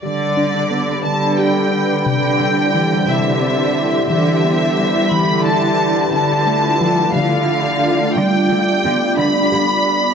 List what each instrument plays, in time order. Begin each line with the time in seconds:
0.03 cello section D3, synth pluck G3, ambient pad G3 D4 G4 B4, violin section D5
0.37 synth pluck D4
0.71 synth pluck B3
1.04 cello section D3, synth pluck G3, violin section A5
1.39 synth pluck G4, violin section G5
2.06 synth pluck C3, cello section D3, ambient pad E4 C5, violin section G5
2.41 synth pluck G3
2.74 synth pluck E3
3.08 synth pluck C3, cello section D3, violin section E5
3.42 synth pluck C4
4.09 cello section D3, synth pluck E3, ambient pad B4, violin section E5
4.44 synth pluck B3
4.78 synth pluck G3
5.10 cello section D3, synth pluck E3, violin section B5
5.45 synth pluck E4, violin section A5
6.13 cello section D3, synth pluck D3, ambient pad A3 D4 F4 D5, violin section A5
6.47 synth pluck A3
6.81 synth pluck F3
7.14 cello section D3, synth pluck D3, violin section F5
7.49 synth pluck D4
8.16 cello section D3, synth pluck G3, ambient pad B3 G4, violin section G5
8.50 cello section D3, synth pluck D4
8.84 cello section D3, synth pluck B3
9.18 cello section D3, synth pluck G3, violin section B5
9.52 cello section D3, synth pluck G4